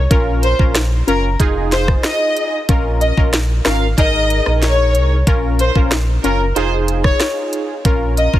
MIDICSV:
0, 0, Header, 1, 5, 480
1, 0, Start_track
1, 0, Key_signature, -5, "minor"
1, 0, Tempo, 645161
1, 80, Time_signature, 4, 2, 24, 8
1, 6246, End_track
2, 0, Start_track
2, 0, Title_t, "Violin section"
2, 0, Program_c, 0, 48
2, 319, Note_on_c, 0, 72, 80
2, 399, Note_off_c, 0, 72, 0
2, 800, Note_on_c, 0, 70, 76
2, 880, Note_off_c, 0, 70, 0
2, 1280, Note_on_c, 0, 72, 78
2, 1359, Note_off_c, 0, 72, 0
2, 1521, Note_on_c, 0, 75, 85
2, 1859, Note_off_c, 0, 75, 0
2, 2242, Note_on_c, 0, 75, 76
2, 2321, Note_off_c, 0, 75, 0
2, 2722, Note_on_c, 0, 77, 73
2, 2801, Note_off_c, 0, 77, 0
2, 2963, Note_on_c, 0, 75, 109
2, 3300, Note_off_c, 0, 75, 0
2, 3441, Note_on_c, 0, 73, 82
2, 3779, Note_off_c, 0, 73, 0
2, 4163, Note_on_c, 0, 72, 79
2, 4241, Note_off_c, 0, 72, 0
2, 4643, Note_on_c, 0, 70, 72
2, 4722, Note_off_c, 0, 70, 0
2, 4881, Note_on_c, 0, 72, 86
2, 4960, Note_off_c, 0, 72, 0
2, 5241, Note_on_c, 0, 73, 86
2, 5320, Note_off_c, 0, 73, 0
2, 6081, Note_on_c, 0, 75, 77
2, 6160, Note_off_c, 0, 75, 0
2, 6246, End_track
3, 0, Start_track
3, 0, Title_t, "Synth stab"
3, 0, Program_c, 1, 62
3, 77, Note_on_c, 1, 61, 91
3, 80, Note_on_c, 1, 65, 85
3, 82, Note_on_c, 1, 70, 105
3, 410, Note_off_c, 1, 61, 0
3, 412, Note_off_c, 1, 65, 0
3, 413, Note_off_c, 1, 70, 0
3, 438, Note_on_c, 1, 61, 74
3, 441, Note_on_c, 1, 65, 71
3, 443, Note_on_c, 1, 70, 82
3, 597, Note_off_c, 1, 61, 0
3, 598, Note_off_c, 1, 65, 0
3, 599, Note_off_c, 1, 70, 0
3, 798, Note_on_c, 1, 61, 78
3, 801, Note_on_c, 1, 65, 70
3, 803, Note_on_c, 1, 70, 85
3, 957, Note_off_c, 1, 61, 0
3, 958, Note_off_c, 1, 65, 0
3, 959, Note_off_c, 1, 70, 0
3, 1038, Note_on_c, 1, 63, 105
3, 1041, Note_on_c, 1, 65, 93
3, 1043, Note_on_c, 1, 68, 111
3, 1922, Note_off_c, 1, 63, 0
3, 1924, Note_off_c, 1, 65, 0
3, 1925, Note_off_c, 1, 68, 0
3, 1998, Note_on_c, 1, 61, 93
3, 2000, Note_on_c, 1, 65, 85
3, 2003, Note_on_c, 1, 70, 102
3, 2331, Note_off_c, 1, 61, 0
3, 2332, Note_off_c, 1, 65, 0
3, 2333, Note_off_c, 1, 70, 0
3, 2359, Note_on_c, 1, 61, 79
3, 2361, Note_on_c, 1, 65, 75
3, 2363, Note_on_c, 1, 70, 86
3, 2517, Note_off_c, 1, 61, 0
3, 2518, Note_off_c, 1, 65, 0
3, 2519, Note_off_c, 1, 70, 0
3, 2719, Note_on_c, 1, 61, 76
3, 2722, Note_on_c, 1, 65, 69
3, 2724, Note_on_c, 1, 70, 85
3, 2877, Note_off_c, 1, 61, 0
3, 2879, Note_off_c, 1, 65, 0
3, 2880, Note_off_c, 1, 70, 0
3, 2959, Note_on_c, 1, 63, 98
3, 2962, Note_on_c, 1, 68, 90
3, 2964, Note_on_c, 1, 70, 113
3, 3843, Note_off_c, 1, 63, 0
3, 3844, Note_off_c, 1, 68, 0
3, 3846, Note_off_c, 1, 70, 0
3, 3920, Note_on_c, 1, 61, 92
3, 3922, Note_on_c, 1, 65, 82
3, 3925, Note_on_c, 1, 70, 99
3, 4252, Note_off_c, 1, 61, 0
3, 4252, Note_off_c, 1, 65, 0
3, 4254, Note_off_c, 1, 70, 0
3, 4280, Note_on_c, 1, 61, 80
3, 4283, Note_on_c, 1, 65, 75
3, 4285, Note_on_c, 1, 70, 86
3, 4438, Note_off_c, 1, 61, 0
3, 4439, Note_off_c, 1, 65, 0
3, 4440, Note_off_c, 1, 70, 0
3, 4640, Note_on_c, 1, 61, 82
3, 4643, Note_on_c, 1, 65, 71
3, 4645, Note_on_c, 1, 70, 84
3, 4798, Note_off_c, 1, 61, 0
3, 4799, Note_off_c, 1, 65, 0
3, 4800, Note_off_c, 1, 70, 0
3, 4880, Note_on_c, 1, 63, 99
3, 4883, Note_on_c, 1, 65, 91
3, 4885, Note_on_c, 1, 68, 109
3, 5764, Note_off_c, 1, 63, 0
3, 5765, Note_off_c, 1, 65, 0
3, 5766, Note_off_c, 1, 68, 0
3, 5839, Note_on_c, 1, 61, 94
3, 5841, Note_on_c, 1, 65, 88
3, 5843, Note_on_c, 1, 70, 110
3, 6171, Note_off_c, 1, 61, 0
3, 6172, Note_off_c, 1, 65, 0
3, 6173, Note_off_c, 1, 70, 0
3, 6199, Note_on_c, 1, 61, 80
3, 6201, Note_on_c, 1, 65, 72
3, 6204, Note_on_c, 1, 70, 86
3, 6246, Note_off_c, 1, 61, 0
3, 6246, Note_off_c, 1, 65, 0
3, 6246, Note_off_c, 1, 70, 0
3, 6246, End_track
4, 0, Start_track
4, 0, Title_t, "Sub bass"
4, 0, Program_c, 2, 38
4, 80, Note_on_c, 2, 34, 111
4, 400, Note_off_c, 2, 34, 0
4, 442, Note_on_c, 2, 34, 98
4, 760, Note_off_c, 2, 34, 0
4, 799, Note_on_c, 2, 30, 101
4, 1012, Note_off_c, 2, 30, 0
4, 1038, Note_on_c, 2, 29, 111
4, 1465, Note_off_c, 2, 29, 0
4, 2000, Note_on_c, 2, 34, 114
4, 2320, Note_off_c, 2, 34, 0
4, 2362, Note_on_c, 2, 34, 101
4, 2680, Note_off_c, 2, 34, 0
4, 2721, Note_on_c, 2, 32, 92
4, 2934, Note_off_c, 2, 32, 0
4, 2959, Note_on_c, 2, 32, 104
4, 3279, Note_off_c, 2, 32, 0
4, 3323, Note_on_c, 2, 34, 90
4, 3683, Note_on_c, 2, 36, 91
4, 3694, Note_off_c, 2, 34, 0
4, 3894, Note_off_c, 2, 36, 0
4, 3921, Note_on_c, 2, 34, 111
4, 4240, Note_off_c, 2, 34, 0
4, 4282, Note_on_c, 2, 34, 99
4, 4601, Note_off_c, 2, 34, 0
4, 4641, Note_on_c, 2, 30, 97
4, 4854, Note_off_c, 2, 30, 0
4, 4881, Note_on_c, 2, 29, 109
4, 5306, Note_off_c, 2, 29, 0
4, 5840, Note_on_c, 2, 34, 115
4, 6160, Note_off_c, 2, 34, 0
4, 6202, Note_on_c, 2, 34, 100
4, 6246, Note_off_c, 2, 34, 0
4, 6246, End_track
5, 0, Start_track
5, 0, Title_t, "Drums"
5, 80, Note_on_c, 9, 36, 126
5, 81, Note_on_c, 9, 42, 78
5, 155, Note_off_c, 9, 36, 0
5, 155, Note_off_c, 9, 42, 0
5, 320, Note_on_c, 9, 42, 58
5, 395, Note_off_c, 9, 42, 0
5, 441, Note_on_c, 9, 36, 90
5, 516, Note_off_c, 9, 36, 0
5, 555, Note_on_c, 9, 37, 91
5, 560, Note_on_c, 9, 42, 90
5, 561, Note_on_c, 9, 38, 110
5, 630, Note_off_c, 9, 37, 0
5, 634, Note_off_c, 9, 42, 0
5, 635, Note_off_c, 9, 38, 0
5, 803, Note_on_c, 9, 42, 58
5, 877, Note_off_c, 9, 42, 0
5, 1039, Note_on_c, 9, 36, 94
5, 1041, Note_on_c, 9, 42, 71
5, 1113, Note_off_c, 9, 36, 0
5, 1116, Note_off_c, 9, 42, 0
5, 1280, Note_on_c, 9, 42, 64
5, 1281, Note_on_c, 9, 38, 66
5, 1354, Note_off_c, 9, 42, 0
5, 1355, Note_off_c, 9, 38, 0
5, 1400, Note_on_c, 9, 36, 88
5, 1400, Note_on_c, 9, 37, 96
5, 1474, Note_off_c, 9, 37, 0
5, 1475, Note_off_c, 9, 36, 0
5, 1514, Note_on_c, 9, 37, 94
5, 1519, Note_on_c, 9, 38, 113
5, 1520, Note_on_c, 9, 42, 65
5, 1588, Note_off_c, 9, 37, 0
5, 1594, Note_off_c, 9, 38, 0
5, 1594, Note_off_c, 9, 42, 0
5, 1760, Note_on_c, 9, 42, 58
5, 1834, Note_off_c, 9, 42, 0
5, 2000, Note_on_c, 9, 42, 78
5, 2001, Note_on_c, 9, 36, 124
5, 2074, Note_off_c, 9, 42, 0
5, 2075, Note_off_c, 9, 36, 0
5, 2241, Note_on_c, 9, 42, 58
5, 2315, Note_off_c, 9, 42, 0
5, 2362, Note_on_c, 9, 36, 92
5, 2436, Note_off_c, 9, 36, 0
5, 2476, Note_on_c, 9, 37, 90
5, 2481, Note_on_c, 9, 42, 87
5, 2482, Note_on_c, 9, 38, 117
5, 2551, Note_off_c, 9, 37, 0
5, 2555, Note_off_c, 9, 42, 0
5, 2556, Note_off_c, 9, 38, 0
5, 2715, Note_on_c, 9, 37, 98
5, 2720, Note_on_c, 9, 38, 124
5, 2723, Note_on_c, 9, 42, 56
5, 2789, Note_off_c, 9, 37, 0
5, 2794, Note_off_c, 9, 38, 0
5, 2797, Note_off_c, 9, 42, 0
5, 2959, Note_on_c, 9, 36, 95
5, 2962, Note_on_c, 9, 42, 72
5, 3034, Note_off_c, 9, 36, 0
5, 3036, Note_off_c, 9, 42, 0
5, 3201, Note_on_c, 9, 42, 68
5, 3275, Note_off_c, 9, 42, 0
5, 3320, Note_on_c, 9, 37, 94
5, 3394, Note_off_c, 9, 37, 0
5, 3440, Note_on_c, 9, 38, 68
5, 3441, Note_on_c, 9, 42, 63
5, 3515, Note_off_c, 9, 38, 0
5, 3516, Note_off_c, 9, 42, 0
5, 3681, Note_on_c, 9, 42, 56
5, 3755, Note_off_c, 9, 42, 0
5, 3921, Note_on_c, 9, 36, 124
5, 3921, Note_on_c, 9, 42, 80
5, 3996, Note_off_c, 9, 36, 0
5, 3996, Note_off_c, 9, 42, 0
5, 4161, Note_on_c, 9, 42, 60
5, 4235, Note_off_c, 9, 42, 0
5, 4282, Note_on_c, 9, 36, 89
5, 4356, Note_off_c, 9, 36, 0
5, 4396, Note_on_c, 9, 37, 91
5, 4401, Note_on_c, 9, 38, 114
5, 4401, Note_on_c, 9, 42, 89
5, 4470, Note_off_c, 9, 37, 0
5, 4475, Note_off_c, 9, 42, 0
5, 4476, Note_off_c, 9, 38, 0
5, 4644, Note_on_c, 9, 42, 58
5, 4718, Note_off_c, 9, 42, 0
5, 4882, Note_on_c, 9, 42, 73
5, 4957, Note_off_c, 9, 42, 0
5, 5120, Note_on_c, 9, 42, 70
5, 5195, Note_off_c, 9, 42, 0
5, 5240, Note_on_c, 9, 37, 102
5, 5241, Note_on_c, 9, 36, 93
5, 5314, Note_off_c, 9, 37, 0
5, 5315, Note_off_c, 9, 36, 0
5, 5355, Note_on_c, 9, 37, 96
5, 5360, Note_on_c, 9, 38, 117
5, 5361, Note_on_c, 9, 42, 64
5, 5429, Note_off_c, 9, 37, 0
5, 5434, Note_off_c, 9, 38, 0
5, 5435, Note_off_c, 9, 42, 0
5, 5601, Note_on_c, 9, 42, 61
5, 5675, Note_off_c, 9, 42, 0
5, 5840, Note_on_c, 9, 42, 76
5, 5841, Note_on_c, 9, 36, 124
5, 5915, Note_off_c, 9, 36, 0
5, 5915, Note_off_c, 9, 42, 0
5, 6081, Note_on_c, 9, 42, 58
5, 6156, Note_off_c, 9, 42, 0
5, 6202, Note_on_c, 9, 36, 89
5, 6246, Note_off_c, 9, 36, 0
5, 6246, End_track
0, 0, End_of_file